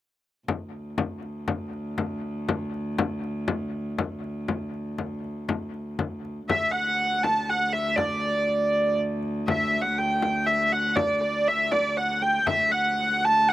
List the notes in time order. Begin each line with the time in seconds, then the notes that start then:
0.48 D2, frame drum
0.98 frame drum
1.23 frame drum
1.48 frame drum
1.73 frame drum
1.98 frame drum
2.49 frame drum
2.74 frame drum
2.98 frame drum
3.24 frame drum
3.48 frame drum
3.98 frame drum
4.24 frame drum
4.48 frame drum
4.74 frame drum
4.98 frame drum
5.24 frame drum
5.49 frame drum
5.74 frame drum
5.99 frame drum
6.25 frame drum
6.49 D2 E5, frame drum
6.71 F#5
7.00 frame drum
7.23 A5, frame drum
7.49 F#5, frame drum
7.73 E5, frame drum
7.96 D5, frame drum
8.48 frame drum
8.98 frame drum
9.23 frame drum
9.48 E5, frame drum
9.81 F#5
9.98 G5, frame drum
10.22 frame drum
10.46 E5, frame drum
10.72 F#5, frame drum
10.96 D5, frame drum
11.20 D5
11.48 E5
11.71 D5, frame drum
11.97 F#5
12.21 G5, frame drum
12.47 D2 E5, frame drum
12.72 F#5
12.97 frame drum
13.25 A5
13.47 F#5, frame drum